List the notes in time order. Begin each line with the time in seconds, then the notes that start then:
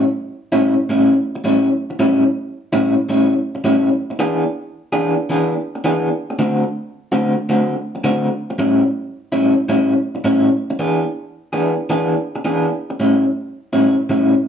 0.52 A2 G3 C#4 E4
0.89 A2 G3 C#4 E4
1.35 muted clean electric guitar stroke
1.44 A2 G3 C#4 E4
1.90 muted clean electric guitar stroke
1.99 A2 G3 C#4 E4
2.73 A2 G3 C#4 E4
3.09 A2 G3 C#4 E4
3.55 muted clean electric guitar stroke
3.64 A2 G3 C#4 E4
4.10 muted clean electric guitar stroke
4.19 E3 B3 D4 G#4
4.93 E3 B3 D4 G#4
5.30 E3 B3 D4 G#4
5.75 muted clean electric guitar stroke
5.84 E3 B3 D4 G#4
6.30 muted clean electric guitar stroke
6.39 D3 A3 C4 F#4
7.12 D3 A3 C4 F#4
7.49 D3 A3 C4 F#4
7.95 muted clean electric guitar stroke
8.04 D3 A3 C4 F#4
8.50 muted clean electric guitar stroke
8.59 A2 G3 C#4 E4
9.32 A2 G3 C#4 E4
9.69 A2 G3 C#4 E4
10.15 muted clean electric guitar stroke
10.24 A2 G3 C#4 E4
10.70 muted clean electric guitar stroke
10.79 E3 B3 D4 G#4
11.53 E3 B3 D4 G#4
11.90 E3 B3 D4 G#4
12.36 muted clean electric guitar stroke
12.45 E3 B3 D4 G#4
12.90 muted clean electric guitar stroke
13.00 A2 G3 C#4 E4
13.73 A2 G3 C#4 E4
14.09 A2 G3 C#4 E4